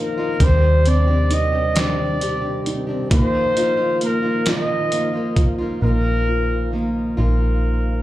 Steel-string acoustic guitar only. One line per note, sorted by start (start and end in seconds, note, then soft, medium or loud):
0.00 0.19 A#3 soft
0.00 0.18 D#4 soft
0.00 0.16 F4 medium
0.18 0.40 A#3 soft
0.18 0.41 D#4 medium
0.18 0.40 F4 medium
0.40 0.83 D#3 medium
0.40 0.84 C4 medium
0.40 0.86 D4 medium
0.40 0.86 G4 medium
0.84 1.07 D#3 medium
0.84 1.08 C4 medium
0.84 1.08 D4 medium
0.84 1.06 G4 medium
1.07 1.54 C4 medium
1.07 1.53 D4 medium
1.07 1.51 G4 medium
1.52 1.75 C4 soft
1.52 1.76 D4 soft
1.52 1.75 G4 medium
1.75 2.18 D#3 medium
1.75 2.19 C4 medium
1.75 2.20 D4 medium
1.75 2.21 G4 loud
2.19 2.42 D#3 soft
2.19 2.43 C4 medium
2.19 2.43 D4 medium
2.19 2.40 G4 medium
2.41 2.89 C4 soft
2.41 2.88 D4 medium
2.41 2.86 G4 medium
2.87 3.11 C4 soft
2.87 3.11 D4 medium
2.87 3.10 G4 soft
3.10 3.56 A#2 medium
3.10 3.53 D#3 medium
3.10 3.54 A#3 medium
3.10 3.56 D#4 medium
3.10 3.56 F4 medium
3.54 3.78 D#3 medium
3.54 3.78 A#3 medium
3.54 3.77 D#4 medium
3.54 3.76 F4 medium
3.77 4.25 A#3 medium
3.77 4.23 D#4 soft
3.77 4.21 F4 medium
4.23 4.45 A#3 soft
4.23 4.46 D#4 medium
4.23 4.46 F4 medium
4.45 4.91 A#2 medium
4.45 4.90 D#3 medium
4.45 4.92 A#3 medium
4.45 4.92 D#4 loud
4.45 4.93 F4 medium
4.91 5.14 D#3 medium
4.91 5.15 A#3 medium
4.91 5.14 D#4 medium
4.91 5.12 F4 medium
5.13 5.61 A#3 soft
5.13 5.59 D#4 soft
5.13 5.57 F4 medium
5.58 5.81 A#3 medium
5.58 5.81 D#4 medium
5.58 5.82 F4 medium
5.81 6.72 A#2 medium
5.81 6.71 D#3 medium
5.81 6.73 A#3 medium
5.81 6.74 D#4 medium
5.81 6.75 F4 medium
6.72 7.18 D#3 soft
6.72 7.17 A#3 medium
6.72 7.17 D#4 medium
6.72 7.16 F4 medium
7.17 8.03 A#2 soft
7.17 8.03 D#3 medium
7.17 8.03 A#3 medium
7.17 8.03 D#4 medium
7.17 8.03 F4 medium